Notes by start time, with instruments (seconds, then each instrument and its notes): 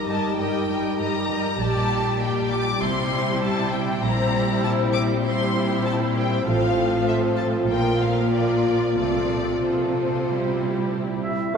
Already playing: french horn section G3 D#4
0.08 cello section G2, viola section G3 G4, violin section A#4 D#5 A5
0.38 cello section G2, viola section G3 G4, violin section A#4 D#5 G5
0.68 cello section G2, viola section G3 G4, violin section A#4 D#5
0.98 cello section G2, viola section G3 G4, violin section A#4 D#5 A#5
1.29 cello section G2, viola section G3 G4, violin section A#4 D#5
1.59 double bass section A#1, cello section A#2, french horn section G3 G4, viola section G3 G4, violin section G4 D5 A5
2.21 viola section G3 G4, violin section G4 D5 G5
2.51 violin section D6
2.81 double bass section C2, cello section C3, viola section G3 E4, french horn section E4, violin section G4 C5 C6
3.42 violin section A5
3.72 violin section G5
4.03 double bass section A#1, cello section A#2, viola section G3 E4, french horn section C4, violin section G4 C5 A#5
4.64 violin section A5
4.93 violin section D6
5.24 viola section G3 E4, violin section G4 C5 C6
5.85 violin section A5
6.16 violin section G5
6.46 double bass section A1, cello section A2, viola section F3 F4, french horn section F4, violin section A4 C5 F5
7.08 violin section E5
7.38 violin section A5
7.69 double bass section A#1, cello section A#2, viola section F3 F4, french horn section A#3, violin section F4 A#4 G5
8.02 violin section F5
8.33 viola section F3 F4, violin section F4 A#4 D5
8.97 double bass section C2, cello section C3, viola section F3 C4, french horn section A3, violin section F4 A4 D5
9.62 viola section F3 C4, violin section F4 A4 C5
10.27 viola section G3 C4, french horn section G3, violin section E4 G4
10.92 french horn section E4
11.23 french horn section E4, oboe E5